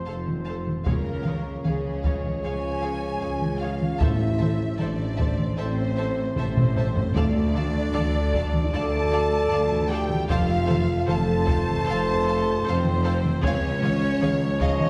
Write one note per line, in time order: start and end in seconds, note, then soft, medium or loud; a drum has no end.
0.00 0.83 F3 medium
0.00 0.83 C4 medium
0.00 0.83 C5 medium
0.05 0.77 F1 medium
0.05 0.78 F1 medium
0.05 0.78 F2 medium
0.05 0.16 A4 medium
0.05 0.16 C5 medium
0.05 0.14 F5 medium
0.05 0.13 A5 medium
0.28 taiko mid soft
0.44 0.56 A4 medium
0.44 0.56 C5 medium
0.44 0.52 F5 soft
0.44 0.52 A5 medium
0.67 taiko mid soft
0.84 1.56 C#2 medium
0.84 1.56 C#3 medium
0.84 3.84 F3 medium
0.84 3.84 G#3 medium
0.84 1.61 A#3 medium
0.84 0.95 G#4 medium
0.84 1.61 A#4 medium
0.84 3.84 C#5 medium
0.84 0.95 C#5 medium
0.84 0.93 F5 medium
0.84 taiko loud
1.23 1.31 F5 soft
1.23 taiko mid medium
1.27 1.35 G#4 medium
1.27 1.35 C#5 medium
1.64 2.35 C#2 medium
1.64 2.35 C#3 medium
1.64 2.44 G#3 medium
1.64 2.44 G#4 medium
1.64 2.42 G#4 medium
1.64 1.75 G#4 medium
1.64 1.74 C#5 medium
1.64 1.73 F5 medium
1.64 taiko mid medium
2.03 2.15 G#4 medium
2.03 2.14 C#5 medium
2.03 2.12 F5 medium
2.03 taiko medium
2.24 taiko mid medium
2.42 3.13 C#2 medium
2.42 3.06 C#2 medium
2.42 3.14 C#3 medium
2.42 3.61 G#4 loud
2.42 2.52 G#4 medium
2.42 2.52 C#5 medium
2.42 2.52 F5 medium
2.42 3.59 G#5 loud
2.42 3.62 G#5 medium
2.81 2.92 G#4 medium
2.81 2.91 C#5 medium
2.81 2.90 F5 medium
3.20 3.92 C#2 medium
3.20 3.93 C#2 medium
3.20 3.93 C#3 medium
3.20 3.31 G#4 medium
3.20 3.31 C#5 medium
3.20 3.28 F5 medium
3.42 taiko mid soft
3.59 4.01 F4 medium
3.59 3.71 C#5 medium
3.59 3.67 F5 medium
3.59 4.01 F5 medium
3.59 4.02 F5 medium
3.63 3.71 G#4 medium
3.81 taiko mid soft
3.98 4.71 A1 medium
3.98 5.15 A2 medium
3.98 4.71 A2 medium
3.98 7.12 E3 medium
3.98 10.26 A3 medium
3.98 4.79 E4 loud
3.98 4.10 A4 medium
3.98 7.12 C5 medium
3.98 4.10 C5 medium
3.98 4.07 E5 medium
3.98 4.80 E5 medium
3.98 4.06 A5 medium
3.98 taiko loud
4.37 4.49 A4 medium
4.37 4.48 C5 medium
4.37 4.45 E5 medium
4.37 4.46 A5 medium
4.37 taiko mid medium
4.77 5.50 A1 medium
4.77 5.50 A2 medium
4.77 5.56 D4 loud
4.77 4.88 A4 medium
4.77 4.89 C5 medium
4.77 5.58 D5 medium
4.77 5.60 D5 medium
4.77 4.85 E5 medium
4.77 4.85 A5 medium
4.77 taiko mid medium
5.16 5.28 A4 medium
5.16 5.28 C5 medium
5.16 5.24 E5 medium
5.16 5.24 A5 medium
5.16 taiko medium
5.39 taiko mid medium
5.57 6.28 A1 medium
5.57 6.29 A2 medium
5.57 6.36 C4 loud
5.57 5.65 A4 medium
5.57 6.35 C5 loud
5.57 5.66 C5 medium
5.57 6.37 C5 medium
5.57 5.66 E5 medium
5.57 5.65 A5 medium
5.97 6.06 A4 medium
5.97 6.06 C5 medium
5.97 6.05 E5 medium
5.97 6.05 A5 medium
6.36 7.07 A1 medium
6.36 7.07 A2 medium
6.36 7.00 C4 loud
6.36 6.44 A4 medium
6.36 6.44 C5 medium
6.36 7.14 C5 medium
6.36 7.15 C5 medium
6.36 6.46 E5 medium
6.36 6.46 A5 medium
6.36 taiko low-mid loud
6.57 taiko low-mid medium
6.75 6.83 A4 medium
6.75 6.83 C5 medium
6.75 6.87 E5 medium
6.75 6.85 A5 medium
6.75 taiko low-mid medium
6.96 taiko low loud
7.14 7.85 D2 medium
7.14 7.86 D2 loud
7.14 8.29 D3 loud
7.14 13.25 F3 medium
7.14 8.70 D4 loud
7.14 7.23 A4 medium
7.14 8.46 D5 loud
7.14 7.23 D5 medium
7.14 10.26 D5 medium
7.14 8.73 D5 loud
7.14 7.24 F5 medium
7.14 7.25 A5 medium
7.14 taiko loud
7.54 7.62 A4 medium
7.54 7.62 D5 medium
7.54 7.64 F5 medium
7.54 7.63 A5 medium
7.54 taiko mid medium
7.93 8.63 D2 medium
7.93 8.64 D2 medium
7.93 8.01 A4 medium
7.93 8.02 D5 medium
7.93 8.02 F5 medium
7.93 8.02 A5 medium
7.93 taiko mid medium
8.32 8.40 A4 medium
8.32 8.40 D5 medium
8.32 8.43 A5 medium
8.32 taiko medium
8.36 8.44 F5 medium
8.54 taiko mid medium
8.71 9.42 D2 loud
8.71 9.42 D2 medium
8.71 9.42 D2 loud
8.71 9.90 A4 loud
8.71 8.81 A4 medium
8.71 8.81 D5 medium
8.71 8.82 F5 medium
8.71 9.90 A5 loud
8.71 8.82 A5 medium
8.71 9.92 A5 loud
9.11 9.19 A4 medium
9.11 9.20 D5 medium
9.11 9.21 F5 medium
9.11 9.21 A5 medium
9.50 10.21 D2 medium
9.50 10.21 D2 loud
9.50 10.21 D2 medium
9.50 9.58 A4 medium
9.50 9.58 D5 medium
9.50 9.60 F5 medium
9.50 9.61 A5 medium
9.71 taiko mid medium
9.89 10.30 G4 loud
9.89 9.98 A4 medium
9.89 9.97 D5 medium
9.89 10.00 F5 medium
9.89 10.29 G5 loud
9.89 10.31 G5 loud
9.89 10.00 A5 medium
10.10 taiko mid medium
10.27 10.91 F1 loud
10.27 11.00 F1 loud
10.27 10.99 F2 loud
10.27 13.25 A3 loud
10.27 11.07 F4 loud
10.27 10.37 A4 medium
10.27 10.36 C5 loud
10.27 13.27 C5 loud
10.27 11.06 F5 loud
10.27 10.39 F5 loud
10.27 11.09 F5 loud
10.27 10.39 A5 loud
10.27 taiko loud
10.67 10.75 A4 medium
10.67 10.75 C5 medium
10.67 10.78 F5 medium
10.67 10.78 A5 medium
10.67 taiko mid medium
11.06 11.78 F1 loud
11.06 11.77 F2 loud
11.06 11.14 A4 medium
11.06 12.66 A4 loud
11.06 11.14 C5 medium
11.06 11.18 F5 medium
11.06 12.62 A5 loud
11.06 12.36 A5 loud
11.06 11.17 A5 medium
11.06 taiko mid medium
11.45 11.53 A4 medium
11.45 11.54 C5 medium
11.45 11.56 A5 medium
11.45 taiko medium
11.50 11.58 F5 medium
11.67 taiko mid medium
11.85 12.56 F1 loud
11.85 12.56 F2 loud
11.85 11.93 A4 medium
11.85 11.93 C5 loud
11.85 11.97 F5 medium
11.90 11.98 A5 medium
12.24 12.32 A4 medium
12.24 12.32 C5 medium
12.24 12.36 F5 medium
12.24 12.36 A5 medium
12.64 13.35 F1 loud
12.64 13.34 F2 loud
12.64 13.44 C4 loud
12.64 12.72 A4 medium
12.64 13.43 C5 loud
12.64 12.72 C5 medium
12.64 13.44 C5 loud
12.64 12.76 A5 medium
12.68 12.76 F5 medium
12.85 taiko mid medium
13.03 13.12 A4 medium
13.03 13.11 C5 medium
13.03 13.12 F5 medium
13.03 13.12 A5 medium
13.24 taiko mid medium
13.42 14.13 C#2 loud
13.42 14.90 F3 loud
13.42 14.90 G#3 loud
13.42 14.44 C#4 loud
13.42 13.50 G#4 loud
13.42 13.50 C#5 medium
13.42 14.59 C#5 loud
13.42 14.90 C#5 loud
13.42 13.54 F5 loud
13.42 taiko loud
13.83 13.91 G#4 medium
13.83 13.91 C#5 medium
13.83 13.92 F5 medium
13.83 taiko mid medium
14.21 14.90 C#2 loud
14.21 14.90 C#2 medium
14.21 14.90 C#2 loud
14.21 14.29 G#4 medium
14.21 14.29 C#5 medium
14.21 14.31 F5 medium
14.21 taiko mid medium
14.60 14.90 D#4 loud
14.60 14.68 G#4 medium
14.60 14.68 C#5 medium
14.60 14.90 D#5 loud
14.60 14.70 F5 medium
14.60 taiko medium
14.80 taiko mid medium